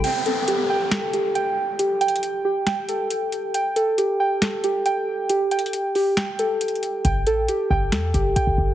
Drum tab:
CC |x-----------------------------------------------|------------------------------------------------|------------------------------------------------|------------------------------------------------|
HH |x-----x-----x-----------x-----x-----x-----------|x-----x-x-x-x-----------x-----x-----x-----x-----|x-----x-----x-----------x-----x-----x-----------|x-----x-x-x-x-----o-----x-----x-----x-x-x-x-----|
SD |------------------------o-----------------------|------------------------o-----------------------|------------------------o-----------------------|------------------------o-----------------------|
BD |------------------------------------------------|------------------------------------------------|------------------------------------------------|------------------------------------------------|

CC |------------------------------------------------|
HH |x-----x-----x-----------x-----x-----x-----------|
SD |------------------------o-----------------------|
BD |o-----------------o-----------o--------o--o-----|